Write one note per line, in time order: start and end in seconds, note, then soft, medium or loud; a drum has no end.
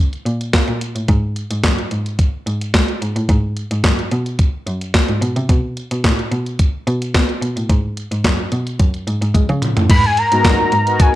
0.13 closed hi-hat soft
0.26 0.46 A#2 medium
0.26 closed hi-hat medium
0.41 closed hi-hat soft
0.53 0.64 A#3 medium
0.53 kick loud
0.53 snare loud
0.53 clap medium
0.53 closed hi-hat medium
0.68 0.77 A#2 medium
0.68 closed hi-hat soft
0.81 closed hi-hat medium
0.95 1.05 A2 medium
0.95 closed hi-hat medium
1.08 1.39 G#2 loud
1.08 kick medium
1.08 closed hi-hat medium
1.36 closed hi-hat soft
1.51 1.60 G#2 medium
1.51 closed hi-hat medium
1.64 1.83 F#2 medium
1.64 kick loud
1.64 snare loud
1.64 clap medium
1.64 closed hi-hat medium
1.78 closed hi-hat soft
1.91 2.11 G#2 medium
1.91 closed hi-hat medium
2.06 closed hi-hat soft
2.19 kick medium
2.19 closed hi-hat medium
2.46 2.66 G#2 medium
2.46 closed hi-hat medium
2.61 closed hi-hat medium
2.74 2.84 G#3 medium
2.74 kick loud
2.74 snare loud
2.74 clap medium
2.74 closed hi-hat medium
2.88 closed hi-hat soft
3.01 3.12 G#2 medium
3.01 closed hi-hat medium
3.16 3.25 A2 medium
3.16 closed hi-hat medium
3.29 3.59 G#2 loud
3.29 kick medium
3.29 closed hi-hat medium
3.57 closed hi-hat soft
3.71 3.80 G#2 medium
3.71 closed hi-hat medium
3.84 4.04 F#2 medium
3.84 kick loud
3.84 snare loud
3.84 clap loud
3.84 closed hi-hat medium
3.99 closed hi-hat soft
4.11 4.31 B2 medium
4.11 closed hi-hat medium
4.26 closed hi-hat soft
4.39 kick loud
4.39 closed hi-hat medium
4.67 4.86 F#2 medium
4.67 closed hi-hat medium
4.81 closed hi-hat soft
4.94 kick loud
4.94 snare loud
4.94 clap medium
4.94 closed hi-hat medium
5.08 5.18 G#2 medium
5.08 closed hi-hat soft
5.22 5.32 B2 medium
5.22 closed hi-hat medium
5.36 5.45 C3 medium
5.36 closed hi-hat medium
5.49 5.79 B2 medium
5.49 kick loud
5.49 closed hi-hat medium
5.77 closed hi-hat soft
5.91 6.00 B2 medium
5.91 closed hi-hat medium
6.04 6.24 A2 medium
6.04 kick loud
6.04 snare loud
6.04 clap loud
6.04 closed hi-hat medium
6.19 closed hi-hat soft
6.32 6.51 B2 medium
6.32 closed hi-hat medium
6.46 closed hi-hat soft
6.59 kick loud
6.59 closed hi-hat medium
6.87 7.06 B2 medium
6.87 closed hi-hat medium
7.02 closed hi-hat medium
7.14 7.25 B3 loud
7.14 kick loud
7.14 snare loud
7.14 clap medium
7.14 closed hi-hat medium
7.29 closed hi-hat soft
7.42 7.52 B2 medium
7.42 closed hi-hat medium
7.56 7.66 A2 medium
7.56 closed hi-hat medium
7.69 8.00 G#2 medium
7.69 kick loud
7.69 closed hi-hat medium
7.97 closed hi-hat medium
8.11 8.21 G#2 medium
8.11 closed hi-hat medium
8.24 8.44 F#2 medium
8.24 kick medium
8.24 snare loud
8.24 clap medium
8.24 closed hi-hat medium
8.52 8.72 B2 medium
8.52 closed hi-hat medium
8.67 closed hi-hat soft
8.79 8.90 F#2 medium
8.79 kick loud
8.79 closed hi-hat medium
8.94 closed hi-hat soft
9.07 9.17 G#2 medium
9.07 closed hi-hat medium
9.22 9.31 G#2 medium
9.22 closed hi-hat medium
9.35 9.45 G#3 medium
9.35 kick loud
9.35 closed hi-hat medium
9.35 high tom medium
9.49 9.58 C#3 medium
9.49 closed hi-hat soft
9.62 closed hi-hat medium
9.62 mid tom medium
9.77 9.86 A2 medium
9.77 closed hi-hat medium
9.77 floor tom medium
9.89 10.20 G#2 loud
9.89 10.07 B5 loud
9.89 kick loud
9.89 closed hi-hat medium
9.89 crash loud
10.04 10.20 G#5 loud
10.04 closed hi-hat soft
10.17 11.02 A#5 loud
10.17 closed hi-hat medium
10.31 10.41 G#2 medium
10.31 10.74 B3 medium
10.31 10.74 D#4 medium
10.31 10.74 F#4 medium
10.31 10.74 A#4 medium
10.31 closed hi-hat medium
10.44 10.64 F#2 medium
10.44 kick loud
10.44 snare loud
10.44 clap loud
10.44 closed hi-hat medium
10.72 10.92 G#2 medium
10.72 closed hi-hat medium
10.86 11.15 B3 medium
10.86 11.15 D#4 medium
10.86 11.15 F#4 medium
10.86 11.15 A#4 medium
10.86 closed hi-hat medium
11.00 11.15 G#5 loud
11.00 kick loud
11.00 closed hi-hat loud